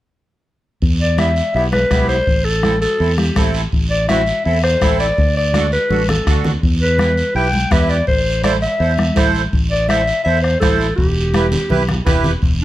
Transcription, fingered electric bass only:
0.82 E2
1.55 B1
1.91 B1
2.27 A1
3.00 E2
3.36 A1
3.73 A1
4.46 E2
4.82 A1
5.18 D2
5.90 A1
6.27 D2
6.63 E2
7.35 B1
7.72 E2
8.08 A1
8.80 E2
9.17 A1
9.53 A1
10.26 E2
10.62 A1
10.98 E1
11.71 B1
12.06 E1
12.43 E1

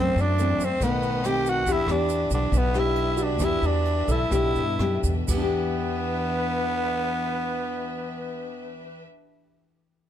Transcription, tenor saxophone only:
0.00 C4
0.21 D4
0.65 C4
0.83 B3
1.26 G4
1.50 F#4
1.72 E4
1.91 D4
2.34 D4
2.58 B3
2.79 E4
3.23 D4
3.45 E4
3.66 D4
4.11 E4
4.35 E4
5.30 B3

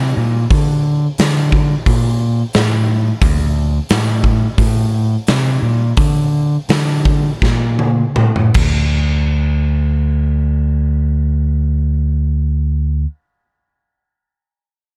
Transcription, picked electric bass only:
Already playing: C3
0.17 A#2
0.51 D3
1.19 D3
1.86 A#2
2.55 A2
3.22 D2
3.90 A2
4.58 A2
5.28 C3
5.62 A#2
5.98 D3
6.69 D3
7.43 A#2
8.17 A2
8.55 D2

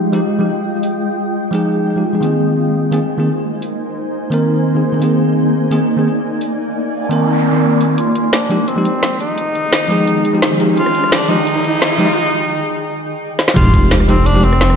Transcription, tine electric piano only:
Already playing: F3 G#3 D#4 G4
0.12 F3 G#3 D#4 G4
0.39 F3 G#3 D#4 G4
1.51 F3 G#3 D#4 G#4
1.96 F3 G#3 D#4 G4
2.13 F3 G#3 D#4 G#4
2.21 D#3 A#3 C4 G#4
2.91 D#3 A#3 C4 G#4
3.18 D#3 A#3 C4 G#4
4.30 D#3 A#3 C4 A#4
4.75 D#3 A#3 C4 G#4
4.92 D#3 A#3 C4 A#4
5.00 D#3 A#3 C4 G#4
5.71 D#3 A#3 C4 G#4
5.97 D#3 A#3 C4 G#4
7.09 D#3 A#3 C4 A#4
7.53 D#3 A#3 C4 A#4
8.49 F3 G#3 D#4 G4
8.76 F3 G#3 D#4 G4
9.88 F3 G#3 D#4 G#4
10.33 F3 G#3 D#4 G4
10.50 F3 G#3 D#4 G#4
10.58 F3 G#3 D#4 G4
11.29 F3 G#3 D#4 G4
11.98 F3 G#3 D#4 G4
13.54 F3 G#3 D#4 G4
14.08 F3 G#3 D#4 G4
14.34 F3 G#3 D#4 G4

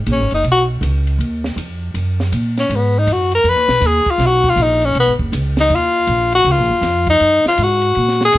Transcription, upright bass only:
0.07 A#1
0.20 G#1
0.32 F#1
0.44 B1
0.81 C#2
1.18 D#2
1.56 F2
1.94 F#2
2.32 A#2
2.69 G#2
3.07 F#2
3.44 F2
3.56 D#2
3.68 B1
3.81 D#2
4.06 muted upright bass stroke
4.18 B1
4.56 A#1
4.95 B1
5.08 G#1
5.19 F#1
5.32 C#2
5.69 D#2
6.07 A#1
6.44 C#2
6.58 A#1
6.70 F#1
6.81 F2
7.20 F#2
7.45 muted upright bass stroke
7.58 G#2
7.96 A#2
8.35 C#3

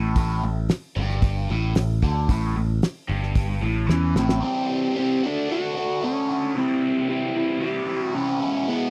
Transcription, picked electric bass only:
Already playing: A1
0.16 A1
0.44 A1
0.97 G1
1.50 A1
1.76 A1
2.02 D2
2.29 A1
2.56 A1
3.09 G1
3.63 A1
3.89 E2
4.15 A1

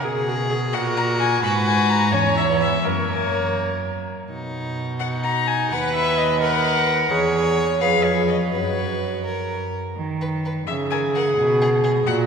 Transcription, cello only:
0.04 B2
0.73 A#2
1.43 G#2
2.13 E2
2.85 F#2
4.29 B2
5.72 D#2
7.11 E2
7.81 F2
8.53 F#2
9.97 D#3
10.68 C#3
11.37 B2
12.07 A#2

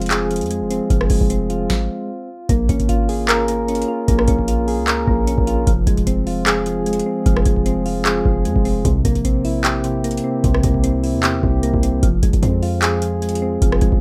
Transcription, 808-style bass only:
Already playing: F1
0.41 F2
0.61 F1
0.90 F1
1.10 F1
1.21 F1
2.49 A#1
2.69 G#1
4.08 A#1
4.28 A#1
4.78 C#2
5.08 A#1
5.38 A#1
5.67 F1
5.87 F1
7.26 F1
7.46 F1
8.25 F1
8.45 F2
8.56 F1
8.85 C2
9.05 A#1
10.44 C2
10.64 C2
11.14 E2
11.43 C2
11.74 C2
12.03 F1
12.23 F1
12.33 F1
12.43 F2
13.62 F1
13.82 F1
13.92 F1

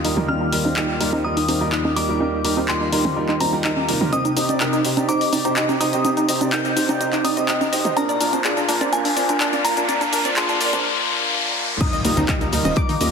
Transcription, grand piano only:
0.04 G3 A#3 D#4 F4 A#4
0.17 G3 A#3 D#4 F4 A#4
0.29 G3 A#3 D#4 F4 A#4
0.53 G3 A#3 D#4 F4 A#4
0.65 G3 A#3 D#4 F4 C5
0.76 G3 A#3 D#4 F4 G4
1.00 G3 A#3 D#4 F4 A#4
1.13 G3 A#3 C5
1.24 G3 A#3 D#4 F4 A#4
1.48 G3 A#3 D#4 F4 C5
1.61 G3 A#3 D#4 F4 A#4
1.72 G3 A#3 D#4 F4
1.96 G3 A#3 D#4 F4 A#4
2.09 G3 A#3 D#4 F4 A#4
2.20 G3 A#3 D#4 F4 A#4
2.44 G3 A#3 D#4 F4 A#4
2.57 G3 A#3 D#4 F4 C5
2.68 G3 A#3 D#4 F4 G4
2.92 G3 A#3 D#4 F4 A#4
3.05 A#3 D#4 F4
3.16 G3 A#3 D#4 F4 A#4
3.40 G3 A#3 D#4 F4 C5
3.53 G3 A#3 D#4 F4 A#4
3.64 G3 A#3 D#4 F4 D#5
3.88 C3 G3 A#3 D#4 F4 A#4
4.01 C3 G3 A#3 D#4 F4 A#4
4.13 C3 D#4 G4 C5
4.37 C3 D#4 G4 C5
4.49 C3 D#4 G4 D5
4.61 C3 D#4 G4 A#4
4.85 C3 D#4 G4 C5
4.97 C3 D#4 G4 D5
5.09 C3 D#4 G4 C5
5.33 C3 D#4 G4 D5
5.45 C3 D#4 G4 C5
5.57 C3 D#4 G4 D#5
5.80 C3 D#4 G4 C5
5.93 C3 D#4 G4 C5
6.04 C3 D#4 G4 C5
6.28 C3 D#4 G4 C5
6.41 C3 D#4 G4 D5
6.52 C3 D#4 G4 A#4
6.76 C3 D#4 G4 C5
6.89 C3 D#4 G4 D5
7.01 C3 D#4 G4 C5
7.25 C3 D#4 G4 D5
7.37 C3 D#4 G4 C5
7.49 C3 D#4 G4 D#5
7.73 D#4 G4 C5
7.85 D#4 G4 C5
7.97 A#2 D4 F4 A#4
8.21 A#2 D4 F4 A#4
8.33 A#2 D4 F4 C5
8.45 A#2 D4 F4 G#4
8.69 A#2 D4 F4 A#4
8.81 A#2 D4 F4 C5
8.93 A#2 D4 F4 A#4
9.17 A#2 D4 F4 C5
9.29 A#2 D4 F4 A#4
9.41 A#2 D4 F4 D5
9.65 A#2 D4 F4 A#4
9.77 A#2 D4 F4 A#4
9.89 A#2 D4 F4 A#4
10.12 A#2 D4 F4 A#4
10.25 A#2 D4 F4 C5
10.37 A#2 D4 F4 G#4
10.61 A#2 D4 F4 A#4
10.73 A#2 D4 F4 C5
11.81 G3 A#3 D#4 F4 A#4
12.05 G3 A#3 D#4 F4 A#4
12.17 G3 A#3 D#4 F4 C5
12.29 G3 A#3 D#4 F4 G4
12.53 G3 A#3 D#4 F4 A#4
12.65 G3 A#3 D#4 F4 C5
12.77 G3 A#3 D#4 F4 A#4
13.01 G3 A#3 D#4 F4 A#4

